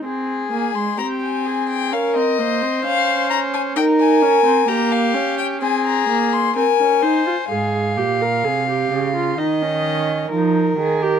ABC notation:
X:1
M:4/4
L:1/16
Q:1/4=64
K:Ab
V:1 name="Violin"
z2 a c' b a2 g f e3 f2 b a | g a3 b f2 g a b2 c' a4 | z16 |]
V:2 name="Violin"
A4 G2 A2 B2 c6 | B4 G4 A4 B2 c2 | f8 e4 B4 |]
V:3 name="Viola"
C2 B, A, C4 D C B, C D4 | E2 D C B,2 D2 C2 B,2 C D E F | A2 G B A G2 F E D3 E2 A G |]
V:4 name="Cello" clef=bass
z16 | z16 | A,,2 B,,2 C,2 D,2 E,4 F,2 E,2 |]